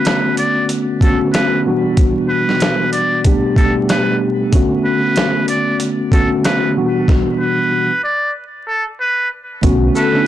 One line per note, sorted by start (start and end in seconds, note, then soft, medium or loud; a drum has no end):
0.00 0.55 D3 medium
0.00 0.55 A3 medium
0.00 0.56 B3 medium
0.00 0.56 C#4 medium
0.00 0.56 F#4 medium
0.00 0.34 B4 medium
0.05 snare loud
0.05 snare medium
0.05 closed hi-hat medium
0.37 0.67 D5 medium
0.37 closed hi-hat medium
0.69 closed hi-hat medium
1.01 1.65 D3 medium
1.01 1.65 A3 medium
1.01 1.65 B3 medium
1.01 1.66 C#4 medium
1.01 1.66 F#4 medium
1.01 1.19 A4 medium
1.01 kick medium
1.01 closed hi-hat medium
1.33 1.62 B4 medium
1.33 snare loud
1.33 snare medium
1.33 closed hi-hat medium
1.65 2.79 B2 medium
1.65 2.79 E3 medium
1.65 2.79 G3 medium
1.65 2.80 B3 medium
1.65 2.80 D4 medium
1.65 2.80 F#4 medium
1.97 kick loud
1.97 closed hi-hat medium
2.29 2.89 B4 medium
2.49 snare soft
2.60 snare loud
2.60 snare medium
2.60 closed hi-hat medium
2.92 3.21 D5 medium
2.92 closed hi-hat medium
3.24 3.53 B2 medium
3.24 3.53 G3 medium
3.24 3.54 A3 medium
3.24 3.54 B3 medium
3.24 3.54 D4 medium
3.24 3.54 G4 medium
3.24 kick medium
3.24 closed hi-hat medium
3.56 4.42 B2 medium
3.56 4.42 G3 medium
3.56 4.43 A3 medium
3.56 4.43 B3 medium
3.56 4.43 D4 medium
3.56 4.43 G4 medium
3.56 3.74 A4 medium
3.56 kick medium
3.56 closed hi-hat medium
3.89 4.18 B4 medium
3.89 snare loud
3.89 snare medium
3.89 closed hi-hat medium
4.51 5.66 D3 medium
4.51 5.66 A3 medium
4.51 5.66 B3 medium
4.51 5.67 C#4 medium
4.51 5.67 F#4 medium
4.51 kick loud
4.51 closed hi-hat loud
4.85 5.45 B4 medium
5.16 snare loud
5.16 snare medium
5.16 closed hi-hat medium
5.48 5.77 D5 medium
5.48 closed hi-hat medium
5.80 closed hi-hat medium
6.11 6.76 D3 medium
6.11 6.76 A3 medium
6.11 6.76 B3 medium
6.11 6.77 C#4 medium
6.11 6.77 F#4 medium
6.11 6.29 A4 medium
6.11 kick medium
6.11 closed hi-hat medium
6.44 6.73 B4 medium
6.44 snare loud
6.44 snare medium
6.44 closed hi-hat medium
6.76 7.90 B2 medium
6.76 7.90 E3 medium
6.76 7.90 G3 medium
6.76 7.90 B3 medium
6.76 7.91 D4 medium
6.76 7.91 F#4 medium
7.08 kick loud
7.08 snare medium
7.40 8.00 B4 medium
8.03 8.32 D5 medium
8.67 8.84 A4 medium
9.00 9.29 B4 medium
9.62 9.88 B1 loud
9.62 10.06 D3 medium
9.62 10.06 A3 medium
9.62 10.06 B3 medium
9.62 10.07 C#4 medium
9.62 10.07 F#4 loud
9.62 kick loud
9.62 closed hi-hat loud
9.95 10.21 A3 medium
9.95 10.21 A4 medium
9.95 10.27 B4 medium
9.95 shaker medium
10.12 10.27 D3 medium
10.12 10.27 A3 medium
10.12 10.27 B3 medium
10.12 10.27 C#4 medium
10.12 10.20 D4 medium
10.21 10.27 E4 medium